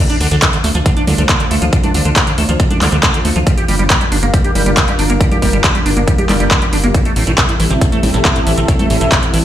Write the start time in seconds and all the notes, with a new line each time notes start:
0.00 A3 D4 F4 C5 F5
0.10 D4, closed hi-hat
0.20 D2 D3, open hi-hat
0.31 D2 D3, closed hi-hat
0.42 D3, kick, clap, closed hi-hat
0.53 D3, closed hi-hat
0.64 D2 A3, open hi-hat
0.75 D2 F3, closed hi-hat
0.86 D3, kick, closed hi-hat
0.97 D4, closed hi-hat
1.07 D2 D3, open hi-hat, high conga
1.18 D2 D3, closed hi-hat
1.29 D3, kick, clap, closed hi-hat
1.40 D3, closed hi-hat
1.51 D2 A3, open hi-hat
1.62 D2 F3, closed hi-hat
1.73 D3, kick, closed hi-hat
1.84 D4, closed hi-hat, high conga
1.94 D2 D3, open hi-hat
2.05 D2 D3, closed hi-hat
2.16 D3, kick, clap, closed hi-hat
2.27 D3, closed hi-hat
2.38 D2 A3, open hi-hat
2.49 D2 F3, closed hi-hat
2.60 D3, kick, closed hi-hat
2.70 D4, closed hi-hat, high conga
2.81 D2 D3, clap, open hi-hat, high conga
2.92 D2 D3, closed hi-hat
3.03 D3, kick, clap, closed hi-hat
3.14 D3, closed hi-hat
3.25 D2 A3, open hi-hat
3.36 D2 F3, closed hi-hat
3.47 G3 D4 A#4 F5, kick, closed hi-hat
3.57 G4, closed hi-hat
3.68 G1 G3, open hi-hat
3.79 G1 G3, closed hi-hat
3.90 G3, kick, clap, closed hi-hat
4.01 G3, closed hi-hat
4.12 G1 D4, open hi-hat
4.23 G1 A#3, closed hi-hat
4.34 G3, kick, closed hi-hat
4.44 G4, closed hi-hat
4.55 G1 G3, open hi-hat, high conga
4.66 G1 G3, closed hi-hat
4.77 G3, kick, clap, closed hi-hat
4.88 G3, closed hi-hat
4.99 G1 D4, open hi-hat
5.10 G1 A#3, closed hi-hat
5.21 G3, kick, closed hi-hat
5.31 G4, closed hi-hat, high conga
5.42 G1 G3, kick, open hi-hat
5.53 G1 G3, closed hi-hat
5.64 G3, kick, clap, closed hi-hat
5.75 G3, closed hi-hat
5.86 G1 D4, open hi-hat
5.97 G1 A#3, closed hi-hat
6.07 G3, kick, closed hi-hat
6.18 G4, closed hi-hat, high conga
6.29 G1 G3, clap, open hi-hat, high conga
6.40 G1 G3, closed hi-hat
6.51 G3, kick, clap, closed hi-hat
6.62 G3, closed hi-hat
6.73 G1 D4, open hi-hat
6.84 G1 A#3, closed hi-hat
6.94 A2 C4 E4 A4 E5, kick, closed hi-hat
7.05 A3, closed hi-hat
7.16 A1 A2, open hi-hat
7.27 A1 A2, closed hi-hat
7.38 A2, kick, clap, closed hi-hat
7.49 A2, closed hi-hat
7.60 A1 E3, open hi-hat
7.70 A1 C3, closed hi-hat
7.81 A2, kick, closed hi-hat
7.92 A3, closed hi-hat
8.03 A1 A2, open hi-hat, high conga
8.14 A1 A2, closed hi-hat
8.25 A2, kick, clap, closed hi-hat
8.36 A2, closed hi-hat
8.47 A1 E3, open hi-hat
8.57 A1 C3, closed hi-hat
8.68 A2, kick, closed hi-hat
8.79 A3, closed hi-hat, high conga
8.90 A1 A2, open hi-hat
9.01 A1 A2, closed hi-hat
9.12 A2, kick, clap, closed hi-hat
9.23 A2, closed hi-hat
9.34 A1 E3, open hi-hat